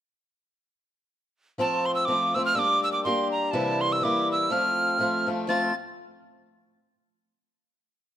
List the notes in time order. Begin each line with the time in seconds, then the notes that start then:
1.58 F3 A3 C4 F4 A5
1.86 C6
1.95 E6
2.05 F3 C4 D6
2.10 A3 F4
2.35 F3 A3 C4 F4 E6
2.45 F6
2.55 G3 A#3 D4 G4 E6
2.59 D6
2.84 E6
2.92 D6
3.04 G3 A#3 D4 G4 C6
3.31 A#5
3.51 C3 E3 G3 A#3 E4 A5
3.81 C6
3.92 E6
4.01 E3 G3 A#3 E4 D6
4.32 E6
4.50 F3 A3 C4 F4 F6
4.99 F3 A3 C4 F4
5.27 F3 A3 C4 F4
5.47 F3 A3 C4 F4 A6